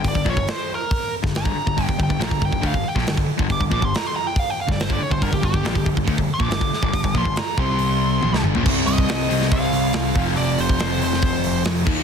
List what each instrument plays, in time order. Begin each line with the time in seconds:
0.03 picked electric bass G1, overdriven electric guitar G2 D3, kick, open hi-hat
0.08 lead electric guitar D5
0.15 picked electric bass G1, overdriven electric guitar G2 D3, kick
0.25 picked electric bass A#1, overdriven electric guitar A#2 F3, kick
0.30 lead electric guitar C#5
0.36 picked electric bass G1, overdriven electric guitar G2 D3, kick
0.47 lead electric guitar C5, snare, open hi-hat
0.75 lead electric guitar A#4
0.91 kick, open hi-hat
1.23 picked electric bass G1, overdriven electric guitar G2 D3, kick, snare
1.35 lead electric guitar A#5, snare, open hi-hat
1.44 picked electric bass G1, overdriven electric guitar G2 D3, kick
1.56 muted overdriven electric guitar stroke
1.66 picked electric bass G1, overdriven electric guitar G2 D3, kick
1.77 picked electric bass G1, overdriven electric guitar G2 D3, kick, open hi-hat
1.84 overdriven electric guitar G2, lead electric guitar G5
1.89 picked electric bass G1, overdriven electric guitar D3, kick
1.99 picked electric bass G1, overdriven electric guitar G2 D3, kick
2.03 lead electric guitar G5
2.09 picked electric bass G1, overdriven electric guitar G2 D3, kick
2.20 picked electric bass A#1, overdriven electric guitar A#2 F3, lead electric guitar A#5, snare, open hi-hat
2.31 picked electric bass G1, overdriven electric guitar G2 D3, kick
2.41 picked electric bass G1, overdriven electric guitar G2 D3, lead electric guitar G5, kick
2.52 picked electric bass G1, overdriven electric guitar G2 D3, kick
2.62 picked electric bass D2, overdriven electric guitar D3 A3, kick, open hi-hat
2.67 lead electric guitar F5
2.73 picked electric bass G1, overdriven electric guitar G2 D3, kick
2.84 muted distorted electric guitar stroke, muted overdriven electric guitar stroke, muted picked electric bass stroke
2.89 lead electric guitar G5
2.95 picked electric bass A#1, overdriven electric guitar A#2 F3, kick, snare
3.06 picked electric bass G1, overdriven electric guitar G2 D3, snare, open hi-hat
3.16 picked electric bass G1, overdriven electric guitar G2 D3, kick
3.27 muted distorted electric guitar stroke, muted overdriven electric guitar stroke, muted picked electric bass stroke
3.37 picked electric bass G1, overdriven electric guitar G2 D3, kick
3.49 picked electric bass G1, overdriven electric guitar G2 D3, lead electric guitar D6, kick, open hi-hat
3.60 picked electric bass G1, overdriven electric guitar G2 D3, kick
3.70 picked electric bass A#1, overdriven electric guitar A#2 F3, lead electric guitar D6, kick
3.80 picked electric bass G1, overdriven electric guitar G2 D3, kick
3.85 lead electric guitar C6
3.95 lead electric guitar A#5, snare, open hi-hat
4.07 lead electric guitar C6
4.16 lead electric guitar A#5
4.27 lead electric guitar G5
4.36 lead electric guitar F5, kick, open hi-hat
4.50 lead electric guitar G5
4.61 lead electric guitar F5
4.68 picked electric bass G1, overdriven electric guitar G2 D3, lead electric guitar D5, kick, snare
4.80 lead electric guitar C5, snare, open hi-hat
4.89 picked electric bass G1, overdriven electric guitar G2 D3, kick
4.93 lead electric guitar D5
5.00 lead electric guitar C#5, muted overdriven electric guitar stroke, muted distorted electric guitar stroke, muted picked electric bass stroke
5.10 picked electric bass G1, overdriven electric guitar G2 D3, lead electric guitar C5, kick
5.22 picked electric bass G1, overdriven electric guitar G2 D3, lead electric guitar A#4, kick, open hi-hat
5.32 picked electric bass G1, overdriven electric guitar G2 D3, lead electric guitar G4, kick
5.42 picked electric bass G1, overdriven electric guitar G2 D3, lead electric guitar G4, kick
5.54 picked electric bass G1, overdriven electric guitar G2 D3, kick
5.64 picked electric bass A#1, overdriven electric guitar A#2 F3, snare, open hi-hat
5.75 picked electric bass G1, overdriven electric guitar G2 D3, kick
5.86 picked electric bass G1, overdriven electric guitar G2 D3, kick
5.97 picked electric bass G1, overdriven electric guitar G2 D3, kick
6.07 picked electric bass D2, overdriven electric guitar D3 A3, kick, open hi-hat
6.18 picked electric bass G1, overdriven electric guitar G2 D3, kick
6.28 muted distorted electric guitar stroke, muted picked electric bass stroke, muted overdriven electric guitar stroke
6.34 lead electric guitar D6
6.40 picked electric bass A#1, overdriven electric guitar A#2 F3, kick
6.48 picked electric bass G1, overdriven electric guitar G2 D3, snare, open hi-hat
6.60 picked electric bass G1, overdriven electric guitar G2 D3, kick
6.70 muted overdriven electric guitar stroke, muted picked electric bass stroke, muted distorted electric guitar stroke, snare
6.82 picked electric bass G1, overdriven electric guitar G2 D3, kick
6.93 picked electric bass G1, overdriven electric guitar G2 D3, kick, open hi-hat
7.04 picked electric bass G1, overdriven electric guitar G2 D3, kick
7.14 picked electric bass A#1, overdriven electric guitar A#2 F3, lead electric guitar C6, kick
7.25 picked electric bass G1, overdriven electric guitar G2 D3, kick
7.36 lead electric guitar A#5, snare, open hi-hat
7.57 picked electric bass C2, overdriven electric guitar C3 G3 C4, lead electric guitar C6, kick
7.79 open hi-hat
8.22 picked electric bass A#1, overdriven electric guitar A#2 F3, high tom
8.33 picked electric bass C2, overdriven electric guitar C3 G3, snare
8.44 picked electric bass G1, overdriven electric guitar G2 D3, mid tom
8.55 picked electric bass A#1, overdriven electric guitar A#2 F3, floor tom
8.65 picked electric bass C2, overdriven electric guitar C3 G3 C4, kick, crash
8.86 picked electric bass C2, lead electric guitar D#5, open hi-hat
8.98 kick
9.09 picked electric bass C2, snare, open hi-hat
9.29 picked electric bass C2, overdriven electric guitar C3 G3 C4, open hi-hat
9.42 snare
9.51 picked electric bass C2, lead electric guitar F5, kick, open hi-hat
9.73 picked electric bass C2, open hi-hat
9.93 picked electric bass C2, snare, open hi-hat
10.14 picked electric bass F1, overdriven electric guitar F2 C3 F3, kick, open hi-hat
10.36 picked electric bass F1, lead electric guitar D5, open hi-hat
10.58 picked electric bass F1, lead electric guitar C5, open hi-hat
10.69 kick
10.79 picked electric bass F1, overdriven electric guitar F2 C3 F3, snare, open hi-hat
11.01 picked electric bass F1, lead electric guitar C5, open hi-hat
11.13 snare
11.22 picked electric bass F1, kick, open hi-hat
11.44 picked electric bass F1, open hi-hat
11.65 picked electric bass F2, snare, open hi-hat
11.85 picked electric bass D#2, overdriven electric guitar D#3 A#3 D#4, kick, crash